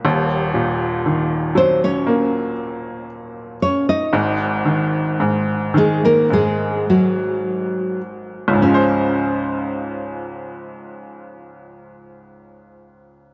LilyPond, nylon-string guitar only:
\new Staff \with { instrumentName = "Nylon-string guitar" } { \time 4/4 \key des \major \tempo 4 = 54 r4. <c' c''>16 <des' des''>8 r4 r16 <des' des''>16 <ees' ees''>16~ | <ees' ees''>16 r4 r16 <aes aes'>16 <bes bes'>16 <aes aes'>8 <ges ges'>4 r8 | des'1 | }